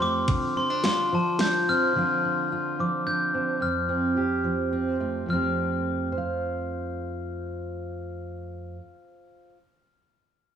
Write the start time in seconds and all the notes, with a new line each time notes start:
Already playing: F2 F3 C4 G4
0.02 A3 D6
0.28 D3, kick, ride
0.56 C4 C6
0.70 D4
0.84 F4 C6, snare, ride
1.12 F3 A5
1.39 D4 G6, snare, ride
1.69 C4 F6
1.95 D3 F3 C4 D4 F4
2.25 D4
2.52 F4
2.79 F3 D6
3.07 D4 G6
3.34 C4
3.60 F2 F6
3.89 C4
4.17 G4
4.44 F3
4.72 C4
5.00 A3
5.26 F2 F3
5.30 A3 C4 F6
5.34 G4
6.12 C5
6.18 F5